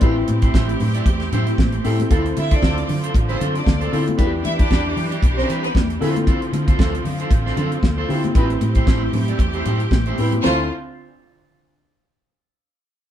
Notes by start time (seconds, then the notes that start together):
Already playing: C4 F4 D5
0.01 A1 A3 C4 E4 G4 B4 C5, kick, closed hi-hat, muted conga
0.16 muted clean electric guitar stroke
0.28 A2, muted clean electric guitar stroke, closed hi-hat, muted conga
0.42 E4 G4 C5, kick, closed hi-hat
0.54 A1 E4 G4 C5, kick, snare, high conga
0.68 muted clean electric guitar stroke, closed hi-hat
0.80 A2, muted clean electric guitar stroke, open hi-hat, low conga
0.95 E4 G4 D5, closed hi-hat
1.06 E2, muted clean electric guitar stroke, kick, closed hi-hat, muted conga
1.20 muted clean electric guitar stroke, snare, closed hi-hat
1.32 A2 E4 G4 C5, closed hi-hat, low conga
1.47 muted clean electric guitar stroke, closed hi-hat
1.58 A1, kick, snare, high conga
1.72 muted clean electric guitar stroke, closed hi-hat
1.84 A2 C4 E4 G4 A4 C5, open hi-hat
1.99 muted clean electric guitar stroke, closed hi-hat, high conga
2.10 D2 D3 F3 C4 E4 F4 A4 C5, kick, closed hi-hat, muted conga
2.26 muted clean electric guitar stroke, closed hi-hat
2.37 D3 E4 E5, muted clean electric guitar stroke, closed hi-hat, muted conga
2.51 D4 F4 A4 C5 D5, kick, closed hi-hat
2.62 D2 F4 A4 C5, kick, snare, high conga
2.78 muted clean electric guitar stroke, closed hi-hat
2.88 D3, muted clean electric guitar stroke, open hi-hat, low conga
3.04 F4 A4 C5, closed hi-hat
3.14 A1, muted clean electric guitar stroke, kick, closed hi-hat, muted conga
3.29 C4 F4 A4 C5, closed hi-hat
3.41 D3 F4 A4 C5, closed hi-hat, low conga
3.55 D4 D5, muted clean electric guitar stroke, closed hi-hat
3.66 D2, muted clean electric guitar stroke, kick, snare, high conga
3.80 F4 A4 C5, closed hi-hat
3.92 D3 C4 E4 F4 A4 C5, open hi-hat
4.06 muted clean electric guitar stroke, closed hi-hat, high conga
4.18 E2 E3 B3 D4 E4 F4 G4 B4, kick, closed hi-hat, muted conga
4.26 G4
4.32 muted clean electric guitar stroke
4.43 E3 E4 E5, muted clean electric guitar stroke, closed hi-hat, muted conga
4.58 D4 G4 B4 D5, kick, closed hi-hat
4.70 E2 D4 G4 B4, kick, snare, high conga
4.84 muted clean electric guitar stroke
4.96 E3, muted clean electric guitar stroke, open hi-hat, low conga
5.11 D4 G4 D5, closed hi-hat
5.22 B1, muted clean electric guitar stroke, kick, closed hi-hat, muted conga
5.37 C4 D4 G4 B4 C5, snare
5.49 E3 D4 G4 B4, closed hi-hat
5.63 B3 B4, muted clean electric guitar stroke, closed hi-hat
5.75 E2, kick, snare, high conga
5.89 muted clean electric guitar stroke, closed hi-hat
6.00 D3 F3 C4 E4 F4 A4 C5, open hi-hat
6.16 muted clean electric guitar stroke, closed hi-hat, high conga
6.27 F4 A4 C5, kick, closed hi-hat, muted conga
6.42 muted clean electric guitar stroke, closed hi-hat
6.53 D3, muted clean electric guitar stroke, closed hi-hat, muted conga
6.68 F4 A4 C5, kick, closed hi-hat
6.79 D2 F4 A4 C5, kick, snare, high conga
6.94 muted clean electric guitar stroke, closed hi-hat
7.04 D3, muted clean electric guitar stroke, open hi-hat, low conga
7.20 F4 A4 C5, closed hi-hat
7.31 A1, muted clean electric guitar stroke, kick, closed hi-hat
7.46 F4 A4 C5, snare
7.56 D3 F4 A4 C5, closed hi-hat, low conga
7.72 muted clean electric guitar stroke, closed hi-hat
7.83 D2, muted clean electric guitar stroke, kick, snare, high conga
7.98 F4 A4 C5
8.08 D3 C4 E4 F4 G4 A4 C5, open hi-hat
8.24 muted clean electric guitar stroke, closed hi-hat, high conga
8.34 A1 A3 C4 E4 G4 B4 C5, kick, closed hi-hat, muted conga
8.50 muted clean electric guitar stroke, closed hi-hat
8.61 A2, muted clean electric guitar stroke, closed hi-hat, muted conga
8.75 E4 G4 C5, kick, closed hi-hat
8.87 A1 E4 G4 C5, kick, snare, high conga
9.03 muted clean electric guitar stroke
9.13 A2, muted clean electric guitar stroke, open hi-hat, low conga
9.28 E4 G4 D5, closed hi-hat
9.39 E2, muted clean electric guitar stroke, kick, closed hi-hat, muted conga
9.54 E4 G4 C5, closed hi-hat
9.65 A2 E4 G4 C5, closed hi-hat, low conga
9.80 muted clean electric guitar stroke, closed hi-hat
9.91 A1, muted clean electric guitar stroke, kick, snare, high conga
10.06 E4 G4 C5, closed hi-hat
10.18 A2 C4 E4 G4 B4 C5, open hi-hat
10.32 muted clean electric guitar stroke, closed hi-hat, high conga
10.42 D2 D3 A3 C4 D4 E4 F4 A4 C5, snare, crash, muted conga